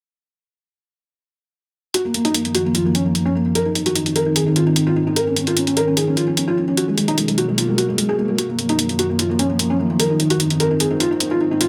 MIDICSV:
0, 0, Header, 1, 4, 480
1, 0, Start_track
1, 0, Tempo, 402685
1, 2315, Time_signature, 4, 2, 24, 8
1, 13927, End_track
2, 0, Start_track
2, 0, Title_t, "Felt piano"
2, 0, Program_c, 0, 0
2, 2314, Note_on_c, 0, 66, 77
2, 2386, Note_off_c, 0, 66, 0
2, 2440, Note_on_c, 0, 58, 52
2, 2505, Note_off_c, 0, 58, 0
2, 2554, Note_on_c, 0, 58, 53
2, 2626, Note_off_c, 0, 58, 0
2, 2679, Note_on_c, 0, 63, 81
2, 2745, Note_off_c, 0, 63, 0
2, 2794, Note_on_c, 0, 58, 53
2, 2865, Note_off_c, 0, 58, 0
2, 2919, Note_on_c, 0, 58, 52
2, 2985, Note_off_c, 0, 58, 0
2, 3034, Note_on_c, 0, 66, 79
2, 3106, Note_off_c, 0, 66, 0
2, 3160, Note_on_c, 0, 58, 52
2, 3225, Note_off_c, 0, 58, 0
2, 3274, Note_on_c, 0, 65, 77
2, 3346, Note_off_c, 0, 65, 0
2, 3399, Note_on_c, 0, 58, 54
2, 3465, Note_off_c, 0, 58, 0
2, 3514, Note_on_c, 0, 61, 81
2, 3585, Note_off_c, 0, 61, 0
2, 3639, Note_on_c, 0, 58, 54
2, 3704, Note_off_c, 0, 58, 0
2, 3753, Note_on_c, 0, 58, 54
2, 3825, Note_off_c, 0, 58, 0
2, 3879, Note_on_c, 0, 61, 83
2, 3944, Note_off_c, 0, 61, 0
2, 3994, Note_on_c, 0, 58, 53
2, 4065, Note_off_c, 0, 58, 0
2, 4120, Note_on_c, 0, 58, 54
2, 4185, Note_off_c, 0, 58, 0
2, 4234, Note_on_c, 0, 70, 82
2, 4306, Note_off_c, 0, 70, 0
2, 4360, Note_on_c, 0, 63, 54
2, 4425, Note_off_c, 0, 63, 0
2, 4474, Note_on_c, 0, 63, 54
2, 4546, Note_off_c, 0, 63, 0
2, 4600, Note_on_c, 0, 66, 81
2, 4665, Note_off_c, 0, 66, 0
2, 4714, Note_on_c, 0, 63, 54
2, 4785, Note_off_c, 0, 63, 0
2, 4840, Note_on_c, 0, 63, 56
2, 4905, Note_off_c, 0, 63, 0
2, 4955, Note_on_c, 0, 70, 80
2, 5026, Note_off_c, 0, 70, 0
2, 5079, Note_on_c, 0, 63, 54
2, 5145, Note_off_c, 0, 63, 0
2, 5194, Note_on_c, 0, 68, 77
2, 5266, Note_off_c, 0, 68, 0
2, 5320, Note_on_c, 0, 63, 57
2, 5385, Note_off_c, 0, 63, 0
2, 5434, Note_on_c, 0, 65, 85
2, 5506, Note_off_c, 0, 65, 0
2, 5560, Note_on_c, 0, 63, 57
2, 5625, Note_off_c, 0, 63, 0
2, 5675, Note_on_c, 0, 63, 56
2, 5746, Note_off_c, 0, 63, 0
2, 5801, Note_on_c, 0, 65, 82
2, 5865, Note_off_c, 0, 65, 0
2, 5914, Note_on_c, 0, 63, 56
2, 5986, Note_off_c, 0, 63, 0
2, 6040, Note_on_c, 0, 63, 58
2, 6105, Note_off_c, 0, 63, 0
2, 6155, Note_on_c, 0, 70, 85
2, 6226, Note_off_c, 0, 70, 0
2, 6280, Note_on_c, 0, 61, 53
2, 6345, Note_off_c, 0, 61, 0
2, 6395, Note_on_c, 0, 61, 56
2, 6466, Note_off_c, 0, 61, 0
2, 6520, Note_on_c, 0, 65, 83
2, 6585, Note_off_c, 0, 65, 0
2, 6635, Note_on_c, 0, 61, 55
2, 6706, Note_off_c, 0, 61, 0
2, 6761, Note_on_c, 0, 61, 58
2, 6826, Note_off_c, 0, 61, 0
2, 6875, Note_on_c, 0, 70, 83
2, 6946, Note_off_c, 0, 70, 0
2, 7000, Note_on_c, 0, 61, 55
2, 7065, Note_off_c, 0, 61, 0
2, 7114, Note_on_c, 0, 68, 78
2, 7185, Note_off_c, 0, 68, 0
2, 7240, Note_on_c, 0, 61, 56
2, 7305, Note_off_c, 0, 61, 0
2, 7353, Note_on_c, 0, 65, 83
2, 7425, Note_off_c, 0, 65, 0
2, 7479, Note_on_c, 0, 61, 57
2, 7544, Note_off_c, 0, 61, 0
2, 7594, Note_on_c, 0, 61, 57
2, 7665, Note_off_c, 0, 61, 0
2, 7720, Note_on_c, 0, 65, 83
2, 7785, Note_off_c, 0, 65, 0
2, 7834, Note_on_c, 0, 61, 55
2, 7905, Note_off_c, 0, 61, 0
2, 7960, Note_on_c, 0, 61, 54
2, 8025, Note_off_c, 0, 61, 0
2, 8073, Note_on_c, 0, 66, 82
2, 8145, Note_off_c, 0, 66, 0
2, 8199, Note_on_c, 0, 56, 55
2, 8265, Note_off_c, 0, 56, 0
2, 8314, Note_on_c, 0, 56, 56
2, 8385, Note_off_c, 0, 56, 0
2, 8439, Note_on_c, 0, 63, 83
2, 8505, Note_off_c, 0, 63, 0
2, 8554, Note_on_c, 0, 56, 53
2, 8625, Note_off_c, 0, 56, 0
2, 8679, Note_on_c, 0, 56, 54
2, 8745, Note_off_c, 0, 56, 0
2, 8793, Note_on_c, 0, 66, 82
2, 8865, Note_off_c, 0, 66, 0
2, 8920, Note_on_c, 0, 56, 55
2, 8985, Note_off_c, 0, 56, 0
2, 9034, Note_on_c, 0, 65, 76
2, 9105, Note_off_c, 0, 65, 0
2, 9160, Note_on_c, 0, 56, 55
2, 9225, Note_off_c, 0, 56, 0
2, 9274, Note_on_c, 0, 66, 81
2, 9346, Note_off_c, 0, 66, 0
2, 9400, Note_on_c, 0, 56, 55
2, 9465, Note_off_c, 0, 56, 0
2, 9515, Note_on_c, 0, 56, 55
2, 9586, Note_off_c, 0, 56, 0
2, 9640, Note_on_c, 0, 68, 82
2, 9705, Note_off_c, 0, 68, 0
2, 9754, Note_on_c, 0, 56, 55
2, 9826, Note_off_c, 0, 56, 0
2, 9880, Note_on_c, 0, 56, 54
2, 9945, Note_off_c, 0, 56, 0
2, 9994, Note_on_c, 0, 66, 81
2, 10065, Note_off_c, 0, 66, 0
2, 10121, Note_on_c, 0, 58, 52
2, 10185, Note_off_c, 0, 58, 0
2, 10235, Note_on_c, 0, 58, 55
2, 10306, Note_off_c, 0, 58, 0
2, 10361, Note_on_c, 0, 63, 85
2, 10426, Note_off_c, 0, 63, 0
2, 10475, Note_on_c, 0, 58, 56
2, 10546, Note_off_c, 0, 58, 0
2, 10601, Note_on_c, 0, 58, 56
2, 10665, Note_off_c, 0, 58, 0
2, 10715, Note_on_c, 0, 66, 81
2, 10786, Note_off_c, 0, 66, 0
2, 10840, Note_on_c, 0, 58, 57
2, 10905, Note_off_c, 0, 58, 0
2, 10955, Note_on_c, 0, 65, 77
2, 11026, Note_off_c, 0, 65, 0
2, 11081, Note_on_c, 0, 58, 57
2, 11145, Note_off_c, 0, 58, 0
2, 11195, Note_on_c, 0, 61, 84
2, 11266, Note_off_c, 0, 61, 0
2, 11321, Note_on_c, 0, 58, 54
2, 11385, Note_off_c, 0, 58, 0
2, 11435, Note_on_c, 0, 58, 56
2, 11506, Note_off_c, 0, 58, 0
2, 11561, Note_on_c, 0, 61, 85
2, 11625, Note_off_c, 0, 61, 0
2, 11675, Note_on_c, 0, 58, 57
2, 11746, Note_off_c, 0, 58, 0
2, 11800, Note_on_c, 0, 58, 57
2, 11865, Note_off_c, 0, 58, 0
2, 11914, Note_on_c, 0, 70, 83
2, 11986, Note_off_c, 0, 70, 0
2, 12039, Note_on_c, 0, 63, 54
2, 12105, Note_off_c, 0, 63, 0
2, 12154, Note_on_c, 0, 63, 58
2, 12225, Note_off_c, 0, 63, 0
2, 12280, Note_on_c, 0, 66, 85
2, 12345, Note_off_c, 0, 66, 0
2, 12395, Note_on_c, 0, 63, 58
2, 12466, Note_off_c, 0, 63, 0
2, 12520, Note_on_c, 0, 63, 57
2, 12585, Note_off_c, 0, 63, 0
2, 12635, Note_on_c, 0, 70, 86
2, 12706, Note_off_c, 0, 70, 0
2, 12761, Note_on_c, 0, 63, 57
2, 12825, Note_off_c, 0, 63, 0
2, 12875, Note_on_c, 0, 68, 78
2, 12946, Note_off_c, 0, 68, 0
2, 13001, Note_on_c, 0, 63, 58
2, 13065, Note_off_c, 0, 63, 0
2, 13115, Note_on_c, 0, 65, 84
2, 13186, Note_off_c, 0, 65, 0
2, 13241, Note_on_c, 0, 63, 57
2, 13306, Note_off_c, 0, 63, 0
2, 13356, Note_on_c, 0, 63, 56
2, 13426, Note_off_c, 0, 63, 0
2, 13482, Note_on_c, 0, 65, 88
2, 13546, Note_off_c, 0, 65, 0
2, 13595, Note_on_c, 0, 63, 55
2, 13666, Note_off_c, 0, 63, 0
2, 13721, Note_on_c, 0, 63, 54
2, 13785, Note_off_c, 0, 63, 0
2, 13835, Note_on_c, 0, 65, 89
2, 13906, Note_off_c, 0, 65, 0
2, 13927, End_track
3, 0, Start_track
3, 0, Title_t, "Ambient pad"
3, 0, Program_c, 1, 92
3, 2314, Note_on_c, 1, 51, 69
3, 2315, Note_on_c, 1, 42, 76
3, 2315, Note_on_c, 1, 53, 87
3, 4215, Note_off_c, 1, 51, 0
3, 4215, Note_off_c, 1, 53, 0
3, 4216, Note_off_c, 1, 42, 0
3, 4235, Note_on_c, 1, 44, 74
3, 4235, Note_on_c, 1, 51, 72
3, 4235, Note_on_c, 1, 60, 85
3, 6135, Note_off_c, 1, 44, 0
3, 6135, Note_off_c, 1, 60, 0
3, 6155, Note_on_c, 1, 53, 70
3, 6155, Note_on_c, 1, 61, 86
3, 8036, Note_off_c, 1, 51, 0
3, 8055, Note_off_c, 1, 61, 0
3, 8056, Note_off_c, 1, 53, 0
3, 8075, Note_on_c, 1, 54, 72
3, 8075, Note_on_c, 1, 58, 84
3, 8076, Note_on_c, 1, 47, 76
3, 9976, Note_off_c, 1, 47, 0
3, 9976, Note_off_c, 1, 54, 0
3, 9976, Note_off_c, 1, 58, 0
3, 9995, Note_on_c, 1, 42, 78
3, 9995, Note_on_c, 1, 51, 69
3, 9995, Note_on_c, 1, 53, 84
3, 11896, Note_off_c, 1, 42, 0
3, 11896, Note_off_c, 1, 53, 0
3, 11914, Note_on_c, 1, 44, 82
3, 11914, Note_on_c, 1, 60, 83
3, 13815, Note_off_c, 1, 44, 0
3, 13815, Note_off_c, 1, 60, 0
3, 13927, Note_off_c, 1, 51, 0
3, 13927, End_track
4, 0, Start_track
4, 0, Title_t, "Drums"
4, 2315, Note_on_c, 9, 42, 74
4, 2434, Note_off_c, 9, 42, 0
4, 2555, Note_on_c, 9, 42, 48
4, 2674, Note_off_c, 9, 42, 0
4, 2680, Note_on_c, 9, 42, 33
4, 2794, Note_off_c, 9, 42, 0
4, 2794, Note_on_c, 9, 42, 76
4, 2914, Note_off_c, 9, 42, 0
4, 2920, Note_on_c, 9, 42, 33
4, 3035, Note_off_c, 9, 42, 0
4, 3035, Note_on_c, 9, 42, 48
4, 3154, Note_off_c, 9, 42, 0
4, 3275, Note_on_c, 9, 42, 70
4, 3394, Note_off_c, 9, 42, 0
4, 3515, Note_on_c, 9, 42, 48
4, 3634, Note_off_c, 9, 42, 0
4, 3755, Note_on_c, 9, 42, 73
4, 3874, Note_off_c, 9, 42, 0
4, 4235, Note_on_c, 9, 42, 74
4, 4354, Note_off_c, 9, 42, 0
4, 4475, Note_on_c, 9, 42, 47
4, 4594, Note_off_c, 9, 42, 0
4, 4600, Note_on_c, 9, 42, 34
4, 4714, Note_off_c, 9, 42, 0
4, 4714, Note_on_c, 9, 42, 77
4, 4834, Note_off_c, 9, 42, 0
4, 4840, Note_on_c, 9, 42, 33
4, 4955, Note_off_c, 9, 42, 0
4, 4955, Note_on_c, 9, 42, 48
4, 5074, Note_off_c, 9, 42, 0
4, 5195, Note_on_c, 9, 42, 71
4, 5314, Note_off_c, 9, 42, 0
4, 5435, Note_on_c, 9, 42, 49
4, 5554, Note_off_c, 9, 42, 0
4, 5675, Note_on_c, 9, 42, 74
4, 5794, Note_off_c, 9, 42, 0
4, 6155, Note_on_c, 9, 42, 73
4, 6274, Note_off_c, 9, 42, 0
4, 6394, Note_on_c, 9, 42, 48
4, 6514, Note_off_c, 9, 42, 0
4, 6520, Note_on_c, 9, 42, 32
4, 6635, Note_off_c, 9, 42, 0
4, 6635, Note_on_c, 9, 42, 75
4, 6754, Note_off_c, 9, 42, 0
4, 6760, Note_on_c, 9, 42, 33
4, 6875, Note_off_c, 9, 42, 0
4, 6875, Note_on_c, 9, 42, 46
4, 6994, Note_off_c, 9, 42, 0
4, 7115, Note_on_c, 9, 42, 70
4, 7234, Note_off_c, 9, 42, 0
4, 7355, Note_on_c, 9, 42, 49
4, 7474, Note_off_c, 9, 42, 0
4, 7595, Note_on_c, 9, 42, 70
4, 7714, Note_off_c, 9, 42, 0
4, 8074, Note_on_c, 9, 42, 71
4, 8194, Note_off_c, 9, 42, 0
4, 8315, Note_on_c, 9, 42, 46
4, 8434, Note_off_c, 9, 42, 0
4, 8440, Note_on_c, 9, 42, 33
4, 8554, Note_off_c, 9, 42, 0
4, 8554, Note_on_c, 9, 42, 69
4, 8674, Note_off_c, 9, 42, 0
4, 8680, Note_on_c, 9, 42, 32
4, 8794, Note_off_c, 9, 42, 0
4, 8794, Note_on_c, 9, 42, 44
4, 8914, Note_off_c, 9, 42, 0
4, 9034, Note_on_c, 9, 42, 69
4, 9154, Note_off_c, 9, 42, 0
4, 9274, Note_on_c, 9, 42, 47
4, 9393, Note_off_c, 9, 42, 0
4, 9514, Note_on_c, 9, 42, 69
4, 9633, Note_off_c, 9, 42, 0
4, 9994, Note_on_c, 9, 42, 66
4, 10113, Note_off_c, 9, 42, 0
4, 10234, Note_on_c, 9, 42, 45
4, 10354, Note_off_c, 9, 42, 0
4, 10360, Note_on_c, 9, 42, 30
4, 10474, Note_off_c, 9, 42, 0
4, 10474, Note_on_c, 9, 42, 70
4, 10594, Note_off_c, 9, 42, 0
4, 10600, Note_on_c, 9, 42, 30
4, 10715, Note_off_c, 9, 42, 0
4, 10715, Note_on_c, 9, 42, 44
4, 10834, Note_off_c, 9, 42, 0
4, 10955, Note_on_c, 9, 42, 67
4, 11074, Note_off_c, 9, 42, 0
4, 11195, Note_on_c, 9, 42, 46
4, 11314, Note_off_c, 9, 42, 0
4, 11435, Note_on_c, 9, 42, 68
4, 11554, Note_off_c, 9, 42, 0
4, 11915, Note_on_c, 9, 42, 72
4, 12034, Note_off_c, 9, 42, 0
4, 12155, Note_on_c, 9, 42, 45
4, 12274, Note_off_c, 9, 42, 0
4, 12281, Note_on_c, 9, 42, 32
4, 12395, Note_off_c, 9, 42, 0
4, 12395, Note_on_c, 9, 42, 70
4, 12514, Note_off_c, 9, 42, 0
4, 12521, Note_on_c, 9, 42, 31
4, 12635, Note_off_c, 9, 42, 0
4, 12635, Note_on_c, 9, 42, 43
4, 12754, Note_off_c, 9, 42, 0
4, 12875, Note_on_c, 9, 42, 68
4, 12994, Note_off_c, 9, 42, 0
4, 13115, Note_on_c, 9, 42, 45
4, 13234, Note_off_c, 9, 42, 0
4, 13355, Note_on_c, 9, 42, 65
4, 13474, Note_off_c, 9, 42, 0
4, 13835, Note_on_c, 9, 42, 70
4, 13927, Note_off_c, 9, 42, 0
4, 13927, End_track
0, 0, End_of_file